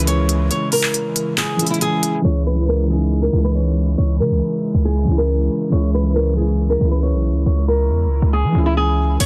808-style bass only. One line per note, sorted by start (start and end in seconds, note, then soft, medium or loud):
0.00 0.51 C#2 loud
2.24 3.29 C#2 loud
3.33 3.96 C#2 loud
3.98 4.22 C#2 loud
4.20 4.32 C#3 medium
4.31 4.41 C#2 loud
4.74 5.06 C#2 loud
5.07 5.49 C#2 loud
5.72 6.77 C#2 loud
6.81 7.15 C#2 loud
7.13 7.31 B1 loud
7.30 7.45 C#2 loud
7.46 7.91 C#2 loud
7.90 8.07 E2 loud
8.06 8.21 C#2 loud
8.22 8.45 C#2 loud
8.44 8.54 E3 loud
8.55 9.17 C#2 loud
9.20 9.26 C#2 loud